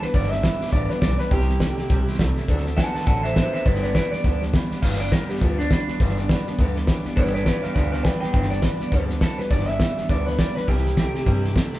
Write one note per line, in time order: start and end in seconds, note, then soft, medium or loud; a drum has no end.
0.00 0.11 G2 medium
0.00 0.11 E3 medium
0.00 0.14 D4 soft
0.00 0.14 G4 soft
0.00 0.14 B4 medium
0.00 muted upright bass stroke medium
0.00 snare soft
0.04 0.13 G3 soft
0.04 0.14 B3 soft
0.14 0.47 G1 medium
0.14 0.31 G2 medium
0.14 0.42 G2 medium
0.14 0.32 D3 medium
0.14 0.44 D3 medium
0.14 0.32 G3 medium
0.14 0.32 B3 medium
0.14 0.31 D4 medium
0.14 0.30 G4 medium
0.14 0.31 D5 medium
0.14 kick loud
0.14 snare soft
0.23 snare soft
0.31 0.41 G3 soft
0.31 0.43 B3 soft
0.31 0.43 D4 medium
0.31 0.43 G4 medium
0.31 0.71 E5 medium
0.31 snare soft
0.42 0.70 G2 medium
0.42 0.71 E3 medium
0.42 0.60 G3 medium
0.42 0.61 B3 medium
0.42 0.60 D4 medium
0.42 0.59 G4 medium
0.42 kick medium
0.42 snare loud
0.42 hi-hat pedal medium
0.60 0.72 G3 soft
0.60 0.72 B3 soft
0.60 0.72 D4 medium
0.60 0.72 G4 medium
0.60 muted upright bass stroke medium
0.60 snare soft
0.67 snare soft
0.72 0.87 A1 medium
0.72 0.90 G2 medium
0.72 1.01 G2 medium
0.72 0.90 D3 medium
0.72 1.02 D3 loud
0.72 0.90 G3 medium
0.72 0.90 B3 medium
0.72 0.89 D4 medium
0.72 0.88 G4 medium
0.72 0.90 D5 medium
0.72 kick loud
0.72 snare soft
0.89 1.00 G3 soft
0.89 1.01 B3 soft
0.89 1.02 D4 medium
0.89 1.02 G4 medium
0.89 1.01 B4 loud
0.89 snare soft
1.01 1.17 B1 medium
1.01 1.29 G2 medium
1.01 1.29 E3 medium
1.01 1.19 G3 medium
1.01 1.19 B3 medium
1.01 1.19 D4 medium
1.01 1.18 G4 medium
1.01 1.19 D5 medium
1.01 kick medium
1.01 snare loud
1.01 hi-hat pedal medium
1.19 1.30 G3 soft
1.19 1.32 B3 soft
1.19 1.32 D4 soft
1.19 1.31 G4 medium
1.19 1.31 B4 loud
1.19 snare soft
1.31 1.64 C2 medium
1.31 1.49 C3 medium
1.31 1.60 C3 medium
1.31 1.49 G3 medium
1.31 1.61 G3 loud
1.31 1.49 C4 medium
1.31 1.48 E4 medium
1.31 2.16 G4 loud
1.31 1.47 G4 medium
1.31 kick loud
1.31 snare soft
1.41 snare soft
1.48 1.60 C4 soft
1.48 1.60 E4 medium
1.48 1.60 G4 medium
1.48 snare soft
1.60 1.88 C3 medium
1.60 1.78 G3 medium
1.60 1.88 A3 loud
1.60 1.78 C4 medium
1.60 1.78 E4 medium
1.60 1.76 G4 medium
1.60 kick medium
1.60 snare loud
1.60 hi-hat pedal medium
1.78 1.88 C4 medium
1.78 1.89 E4 medium
1.78 1.89 G4 medium
1.78 muted upright bass stroke medium
1.78 snare soft
1.89 2.05 B1 medium
1.89 2.07 C3 medium
1.89 2.18 C3 medium
1.89 2.07 G3 medium
1.89 2.19 G3 medium
1.89 2.07 C4 loud
1.89 2.07 E4 medium
1.89 2.05 G4 loud
1.89 kick loud
1.89 snare soft
2.07 2.18 C4 medium
2.07 2.19 E4 medium
2.07 2.19 G4 medium
2.07 snare soft
2.13 snare soft
2.19 2.34 C2 medium
2.19 2.46 C3 medium
2.19 2.36 G3 medium
2.19 2.46 A3 medium
2.19 2.37 C4 medium
2.19 2.36 E4 medium
2.19 2.35 G4 medium
2.19 kick medium
2.19 snare loud
2.19 hi-hat pedal medium
2.36 2.48 C4 soft
2.36 2.49 E4 medium
2.36 2.48 G4 medium
2.36 snare soft
2.48 2.81 D2 loud
2.48 2.66 D3 medium
2.48 2.76 D3 medium
2.48 2.66 F#3 medium
2.48 2.77 A3 medium
2.48 2.66 C4 medium
2.48 2.66 D4 loud
2.48 2.64 A4 loud
2.48 kick loud
2.48 snare soft
2.57 snare soft
2.66 2.76 C4 medium
2.66 2.77 D4 medium
2.66 2.78 A4 medium
2.66 snare soft
2.76 3.05 D3 medium
2.76 2.95 F#3 medium
2.76 3.05 B3 medium
2.76 2.95 C4 medium
2.76 2.94 D4 medium
2.76 2.93 A4 medium
2.76 2.93 F#5 medium
2.76 2.94 A5 medium
2.76 kick medium
2.76 snare loud
2.76 hi-hat pedal medium
2.94 3.06 C4 soft
2.94 3.06 D4 soft
2.94 3.07 A4 medium
2.94 3.05 F#5 medium
2.94 3.06 A5 loud
2.94 muted upright bass stroke medium
2.94 snare soft
3.01 snare soft
3.06 3.40 A1 medium
3.06 3.24 D3 medium
3.06 3.35 D3 medium
3.06 3.24 F#3 medium
3.06 3.37 A3 loud
3.06 3.25 C4 medium
3.06 3.23 D4 medium
3.06 3.22 A4 medium
3.06 3.23 F#5 medium
3.06 3.24 A5 medium
3.06 kick loud
3.06 snare soft
3.23 3.35 C4 soft
3.23 3.36 D4 medium
3.23 3.36 A4 medium
3.23 3.35 C5 medium
3.23 3.36 E5 loud
3.23 snare soft
3.35 3.63 D3 medium
3.35 3.53 F#3 medium
3.35 3.64 B3 medium
3.35 3.54 C4 medium
3.35 3.53 D4 medium
3.35 3.52 A4 medium
3.35 3.52 C5 medium
3.35 3.53 E5 medium
3.35 kick medium
3.35 snare loud
3.35 hi-hat pedal medium
3.53 3.65 C4 soft
3.53 3.65 D4 soft
3.53 3.65 A4 medium
3.53 3.66 C5 medium
3.53 3.66 E5 medium
3.53 muted upright bass stroke medium
3.53 snare soft
3.64 3.99 G1 medium
3.64 3.83 G2 medium
3.64 3.93 G2 medium
3.64 3.83 D3 medium
3.64 3.95 D3 loud
3.64 3.83 G3 medium
3.64 3.83 B3 medium
3.64 3.82 D4 medium
3.64 3.81 G4 loud
3.64 3.82 B4 medium
3.64 3.83 D5 loud
3.64 kick loud
3.64 snare soft
3.75 snare soft
3.82 3.94 G3 soft
3.82 3.95 B3 soft
3.82 3.95 D4 soft
3.82 3.95 G4 medium
3.82 3.93 B4 medium
3.82 3.94 D5 medium
3.82 snare soft
3.94 4.22 G2 medium
3.94 4.22 E3 medium
3.94 4.13 G3 medium
3.94 4.13 B3 medium
3.94 4.12 D4 medium
3.94 4.11 G4 medium
3.94 4.11 B4 medium
3.94 4.11 D5 medium
3.94 kick medium
3.94 snare loud
3.94 hi-hat pedal medium
4.12 4.23 G3 soft
4.12 4.24 B3 soft
4.12 4.24 D4 medium
4.12 4.24 G4 medium
4.12 4.41 D5 loud
4.12 muted upright bass stroke medium
4.12 snare soft
4.24 4.57 D2 medium
4.24 4.42 G2 medium
4.24 4.52 G2 medium
4.24 4.42 D3 medium
4.24 4.54 D3 loud
4.24 4.42 G3 medium
4.24 4.42 B3 medium
4.24 4.41 D4 medium
4.24 4.40 G4 medium
4.24 kick loud
4.24 snare soft
4.41 4.52 G3 soft
4.41 4.53 B3 soft
4.41 4.54 D4 medium
4.41 4.53 G4 medium
4.41 snare soft
4.53 4.81 G2 medium
4.53 4.81 E3 medium
4.53 4.71 G3 medium
4.53 4.71 B3 medium
4.53 4.71 D4 medium
4.53 4.70 G4 medium
4.53 kick medium
4.53 snare loud
4.53 hi-hat pedal medium
4.71 4.83 G3 soft
4.71 4.83 B3 medium
4.71 4.83 D4 medium
4.71 4.83 G4 medium
4.71 muted upright bass stroke medium
4.71 snare soft
4.82 5.15 G1 medium
4.82 5.00 G2 medium
4.82 5.11 G2 medium
4.82 5.12 D3 medium
4.82 5.01 D3 medium
4.82 5.01 G3 medium
4.82 5.00 B3 medium
4.82 5.00 D4 medium
4.82 4.99 G4 medium
4.82 4.99 F5 medium
4.82 kick loud
4.82 snare soft
4.82 crash loud
4.92 snare soft
5.00 5.10 G3 soft
5.00 5.11 B3 soft
5.00 5.12 D4 medium
5.00 5.12 G4 medium
5.00 5.12 D5 medium
5.00 snare soft
5.11 5.39 G2 medium
5.11 5.39 E3 loud
5.11 5.29 G3 medium
5.11 5.29 B3 medium
5.11 5.29 D4 medium
5.11 5.28 G4 medium
5.11 5.29 A#4 medium
5.11 kick medium
5.11 snare loud
5.11 hi-hat pedal medium
5.29 5.41 G3 soft
5.29 5.41 B3 soft
5.29 5.41 D4 medium
5.29 5.41 G4 medium
5.29 muted upright bass stroke medium
5.29 snare soft
5.36 snare soft
5.41 5.74 D2 medium
5.41 5.70 G2 medium
5.41 5.59 G2 medium
5.41 5.59 D3 medium
5.41 5.71 D3 medium
5.41 5.59 G3 medium
5.41 5.59 B3 medium
5.41 5.58 D4 medium
5.41 5.58 F4 medium
5.41 5.57 G4 loud
5.41 kick loud
5.41 snare soft
5.58 5.70 G3 soft
5.58 5.71 B3 soft
5.58 5.69 D4 medium
5.58 5.71 D4 medium
5.58 5.71 G4 medium
5.58 snare soft
5.71 5.98 G2 medium
5.71 5.98 E3 medium
5.71 5.88 G3 medium
5.71 5.89 B3 medium
5.71 6.56 D4 medium
5.71 5.88 D4 medium
5.71 5.87 G4 medium
5.71 kick medium
5.71 snare loud
5.71 hi-hat pedal medium
5.88 5.99 G3 soft
5.88 6.00 B3 soft
5.88 6.00 D4 soft
5.88 6.00 G4 medium
5.88 muted upright bass stroke medium
5.88 snare soft
6.00 6.33 G1 loud
6.00 6.17 G2 medium
6.00 6.28 G2 medium
6.00 6.18 D3 medium
6.00 6.29 D3 loud
6.00 6.18 G3 medium
6.00 6.18 B3 medium
6.00 6.17 D4 medium
6.00 6.16 G4 medium
6.00 kick loud
6.00 snare soft
6.09 snare soft
6.17 6.28 G3 soft
6.17 6.29 B3 medium
6.17 6.30 D4 medium
6.17 6.29 G4 medium
6.17 snare soft
6.29 6.56 G2 medium
6.29 6.56 E3 medium
6.29 6.47 G3 medium
6.29 6.47 B3 medium
6.29 6.46 D4 medium
6.29 6.45 G4 medium
6.29 kick medium
6.29 snare loud
6.29 hi-hat pedal medium
6.47 6.58 G3 soft
6.47 6.58 B3 medium
6.47 6.59 D4 medium
6.47 6.59 G4 medium
6.47 muted upright bass stroke medium
6.47 snare soft
6.59 6.91 D2 medium
6.59 6.87 G2 medium
6.59 6.76 G2 medium
6.59 6.88 D3 medium
6.59 6.76 D3 medium
6.59 6.77 G3 loud
6.59 6.77 B3 medium
6.59 6.76 D4 medium
6.59 6.75 G4 loud
6.59 kick loud
6.59 snare soft
6.76 6.87 G3 medium
6.76 6.88 B3 medium
6.76 6.88 D4 medium
6.76 6.88 G4 medium
6.76 snare soft
6.87 7.15 G2 medium
6.87 7.15 E3 medium
6.87 7.05 G3 medium
6.87 7.05 B3 medium
6.87 7.05 D4 medium
6.87 7.04 G4 medium
6.87 kick medium
6.87 snare loud
6.87 hi-hat pedal medium
7.05 7.16 G3 medium
7.05 7.17 B3 medium
7.05 7.17 D4 medium
7.05 7.17 G4 medium
7.05 muted upright bass stroke medium
7.05 snare soft
7.16 7.50 G1 loud
7.16 7.34 G2 medium
7.16 7.45 G2 medium
7.16 7.34 D3 medium
7.16 7.47 D3 loud
7.16 7.35 G3 medium
7.16 7.35 B3 medium
7.16 7.34 D4 medium
7.16 7.33 G4 medium
7.16 7.33 B4 medium
7.16 7.33 D5 medium
7.16 kick loud
7.16 snare soft
7.26 snare soft
7.34 7.45 G3 soft
7.34 7.46 B3 soft
7.34 7.47 D4 soft
7.34 7.46 G4 medium
7.34 7.44 B4 medium
7.34 7.45 D5 medium
7.34 snare soft
7.45 7.73 G2 medium
7.45 7.74 E3 loud
7.45 7.64 G3 medium
7.45 7.64 B3 medium
7.45 7.63 D4 medium
7.45 7.62 G4 medium
7.45 7.62 B4 medium
7.45 7.62 D5 medium
7.45 kick medium
7.45 snare loud
7.45 hi-hat pedal medium
7.63 7.75 G3 soft
7.63 7.75 B3 medium
7.63 7.75 D4 medium
7.63 7.75 G4 medium
7.63 7.73 D5 medium
7.63 7.74 F5 medium
7.63 muted upright bass stroke medium
7.63 snare soft
7.74 8.08 D2 medium
7.74 7.93 G2 medium
7.74 8.04 G2 medium
7.74 7.93 D3 medium
7.74 8.05 D3 medium
7.74 7.93 G3 medium
7.74 7.93 B3 medium
7.74 7.92 D4 medium
7.74 7.91 G4 medium
7.74 7.91 D5 medium
7.74 7.91 F5 loud
7.74 kick loud
7.74 snare soft
7.92 8.02 G3 soft
7.92 8.03 B3 soft
7.92 8.04 D4 medium
7.92 8.05 G4 medium
7.92 8.03 D5 medium
7.92 8.04 F5 loud
7.92 snare soft
8.03 8.32 G2 medium
8.03 8.32 E3 medium
8.03 8.22 G3 medium
8.03 8.22 B3 medium
8.03 8.21 D4 medium
8.03 8.20 G4 medium
8.03 8.19 B4 medium
8.03 8.20 G5 medium
8.03 kick medium
8.03 snare loud
8.03 hi-hat pedal medium
8.20 8.33 G3 soft
8.20 8.33 B3 soft
8.20 8.33 D4 medium
8.20 8.33 G4 medium
8.20 8.32 B4 medium
8.20 8.32 G5 loud
8.20 muted upright bass stroke medium
8.20 snare soft
8.33 8.67 G1 medium
8.33 8.51 G2 medium
8.33 8.62 G2 medium
8.33 8.51 D3 medium
8.33 8.63 D3 loud
8.33 8.51 G3 medium
8.33 8.51 B3 medium
8.33 8.50 D4 medium
8.33 8.49 G4 medium
8.33 8.50 B4 medium
8.33 8.50 G5 medium
8.33 kick loud
8.33 snare soft
8.42 snare soft
8.50 8.61 G3 soft
8.50 8.62 B3 soft
8.50 8.63 D4 medium
8.50 8.63 G4 medium
8.50 9.08 D5 loud
8.50 snare soft
8.62 8.90 G2 medium
8.62 8.90 E3 medium
8.62 8.80 G3 medium
8.62 8.81 B3 medium
8.62 8.80 D4 medium
8.62 8.79 G4 medium
8.62 kick medium
8.62 snare loud
8.62 hi-hat pedal medium
8.80 8.91 G3 soft
8.80 8.92 B3 soft
8.80 8.92 D4 soft
8.80 8.92 G4 medium
8.80 muted upright bass stroke medium
8.80 snare soft
8.92 9.25 D2 medium
8.92 9.10 G2 loud
8.92 9.21 G2 medium
8.92 9.10 D3 medium
8.92 9.22 D3 loud
8.92 9.10 G3 medium
8.92 9.09 B3 medium
8.92 9.09 D4 medium
8.92 9.07 G4 loud
8.92 kick loud
8.92 snare soft
9.08 9.20 G3 soft
9.08 9.20 B3 medium
9.08 9.21 D4 medium
9.08 9.21 G4 medium
9.08 snare soft
9.21 9.49 G2 medium
9.21 9.49 E3 medium
9.21 9.39 G3 medium
9.21 9.39 B3 medium
9.21 9.38 D4 medium
9.21 9.37 G4 medium
9.21 9.38 A4 medium
9.21 kick medium
9.21 snare loud
9.21 hi-hat pedal medium
9.38 9.50 G3 soft
9.38 9.50 B3 soft
9.38 9.51 D4 soft
9.38 9.51 G4 medium
9.38 9.50 B4 loud
9.38 muted upright bass stroke medium
9.38 snare soft
9.50 9.83 G1 medium
9.50 9.68 G2 medium
9.50 9.79 G2 medium
9.50 9.68 D3 medium
9.50 9.80 D3 loud
9.50 9.68 G3 medium
9.50 9.68 B3 medium
9.50 9.68 D4 medium
9.50 9.66 G4 medium
9.50 9.68 D5 loud
9.50 kick loud
9.50 snare soft
9.59 snare soft
9.68 9.79 G3 soft
9.68 9.80 B3 soft
9.68 9.81 D4 medium
9.68 9.80 G4 medium
9.68 10.08 E5 medium
9.68 snare soft
9.80 10.07 G2 medium
9.80 10.07 E3 medium
9.80 9.97 G3 medium
9.80 9.98 B3 medium
9.80 9.97 D4 medium
9.80 9.96 G4 medium
9.80 kick medium
9.80 snare loud
9.80 hi-hat pedal medium
9.97 10.09 G3 soft
9.97 10.09 B3 medium
9.97 10.09 D4 medium
9.97 10.09 G4 medium
9.97 muted upright bass stroke medium
9.97 snare soft
10.09 10.42 D2 medium
10.09 10.37 G2 medium
10.09 10.27 G2 medium
10.09 10.38 D3 medium
10.09 10.27 D3 medium
10.09 10.27 G3 medium
10.09 10.27 B3 medium
10.09 10.26 D4 medium
10.09 10.25 G4 medium
10.09 10.27 D5 medium
10.09 kick loud
10.09 snare soft
10.26 10.37 G3 soft
10.26 10.38 B3 soft
10.26 10.39 D4 medium
10.26 10.38 G4 medium
10.26 10.38 B4 medium
10.26 snare soft
10.38 10.65 G2 medium
10.38 10.66 E3 medium
10.38 10.56 G3 medium
10.38 10.56 B3 medium
10.38 10.55 D4 medium
10.38 10.54 G4 medium
10.38 10.56 D5 medium
10.38 kick medium
10.38 snare loud
10.38 hi-hat pedal medium
10.56 10.67 G3 soft
10.56 10.68 B3 soft
10.56 10.68 D4 soft
10.56 10.68 G4 medium
10.56 10.68 B4 loud
10.56 muted upright bass stroke medium
10.56 snare soft
10.67 11.01 C2 medium
10.67 10.85 C3 medium
10.67 10.96 C3 medium
10.67 10.85 G3 medium
10.67 10.97 G3 loud
10.67 10.85 C4 medium
10.67 10.86 E4 medium
10.67 11.53 G4 loud
10.67 10.84 G4 medium
10.67 kick loud
10.67 snare soft
10.77 snare soft
10.85 10.97 C4 soft
10.85 10.97 E4 soft
10.85 10.97 G4 medium
10.85 snare soft
10.97 11.24 C3 medium
10.97 11.14 G3 medium
10.97 11.24 A3 medium
10.97 11.15 C4 medium
10.97 11.14 E4 medium
10.97 11.13 G4 medium
10.97 kick medium
10.97 snare loud
10.97 hi-hat pedal medium
11.14 11.26 C4 medium
11.14 11.26 E4 medium
11.14 11.26 G4 medium
11.14 snare soft
11.26 11.59 G2 medium
11.26 11.44 C3 medium
11.26 11.55 C3 medium
11.26 11.44 G3 medium
11.26 11.56 G3 medium
11.26 11.44 C4 medium
11.26 11.44 E4 medium
11.26 11.42 G4 loud
11.26 kick loud
11.26 snare soft
11.44 11.55 C4 soft
11.44 11.56 E4 medium
11.44 11.55 G4 medium
11.44 snare soft
11.55 11.79 C3 medium
11.55 11.73 G3 medium
11.55 11.79 A3 medium
11.55 11.73 C4 medium
11.55 11.73 E4 medium
11.55 11.71 G4 medium
11.55 kick medium
11.55 snare loud
11.55 hi-hat pedal medium
11.72 11.79 C4 soft
11.72 11.79 E4 medium
11.72 11.79 G4 medium
11.72 muted upright bass stroke medium
11.72 snare soft